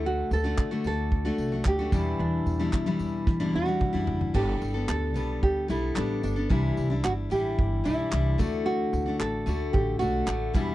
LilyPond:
<<
  \new Staff \with { instrumentName = "Nylon-string guitar" } { \time 4/4 \key g \major \tempo 4 = 111 fis'8 a'4 a'4. g'4 | d'2~ d'8 fis'4. | g'4 a'4 g'8 e'8 d'8 d'8~ | d'4 fis'8 g'4 e'4. |
fis'4 a'4 g'8 fis'4. | }
  \new Staff \with { instrumentName = "Steel-string acoustic guitar" } { \time 4/4 \key g \major <d a d' fis'>8. <d a d' fis'>8 <d a d' fis'>4 <d a d' fis'>8 <a d' fis'>8 <a d' fis'>16 <e, b, e g d' e'>8~ | <e, b, e g d' e'>8. <e, b, e g d' e'>8 <e, b, e g d' e'>4 <e, b, e g d' e'>8 <e g d' e'>8 <e g d' e'>8. | <g b d' a'>8. <b d' a'>8. <g b d' a'>4 <g b d' a'>8 <g b d' a'>8. <b d' a'>16 | <c e g d' e'>8. <g d' e'>8. <e g d' e'>4 <e g d' e'>8 <e g d' e'>8 <d a d' fis'>8~ |
<d a d' fis'>8. <a d' fis'>8. <d a d' fis'>4 <d a d' fis'>8 <d a d' fis'>8 <e, b, e g d' e'>8 | }
  \new Staff \with { instrumentName = "Upright bass" } { \clef bass \time 4/4 \key g \major d,8 d,8 d8 d,4 c,8 d,8 e,8 | e,8 e,8 e8 e,8 e8 e,8. fis,16 fis,,8 | g,,8 g,,8 d,8 b,,8 d,8 b,,8 a,,8 g,,8 | c,8 c,8 g,,8 a,,8 g,,8 b,,8 c,8 d,8~ |
d,8 d,8 a,,8 d,8 a,,8 b,,8 a,,8 e,8 | }
  \new DrumStaff \with { instrumentName = "Drums" } \drummode { \time 4/4 r8 tamb8 <hc bd>8 tamb8 bd8 tamb8 <hc bd>8 <bd tamb>8 | r8 tamb8 <hc bd>8 tamb8 <bd sn>8 tommh8 <bd toml>8 tomfh16 tomfh16 | <cymc bd>8 tamb8 hc8 tamb8 bd8 tamb8 hc8 tamb8 | bd8 tamb8 hc8 tamb8 bd8 tamb8 hc8 <bd tamb>8 |
r8 tamb8 hc8 tamb8 bd8 tamb8 hc8 <bd tamb>8 | }
>>